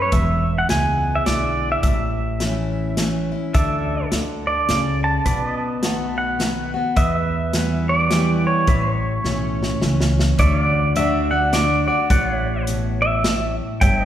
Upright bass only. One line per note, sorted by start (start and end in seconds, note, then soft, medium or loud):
0.12 0.62 E1 medium
0.70 1.18 C#2 medium
1.27 1.75 B1 medium
1.83 3.32 A1 medium
3.54 4.04 D2 medium
4.12 4.60 D2 medium
4.69 5.17 C#2 medium
5.26 6.74 B1 medium
6.97 8.45 E2 medium
8.68 9.17 A1 medium
9.25 9.73 B1 medium
9.82 10.31 C#2 medium
10.39 11.88 D2 medium
12.10 13.59 A1 loud
13.81 14.05 G1 medium